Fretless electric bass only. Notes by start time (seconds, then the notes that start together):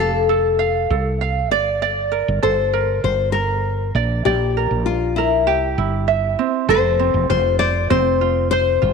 Already playing: F1
0.90 C2
1.51 G1
2.28 G1
2.43 G1
3.04 G1
3.95 A#1
4.25 A#1
4.71 A#1
5.48 C2
5.78 G1
6.68 F1
7.14 F1
7.30 F1
7.91 F1
8.82 G1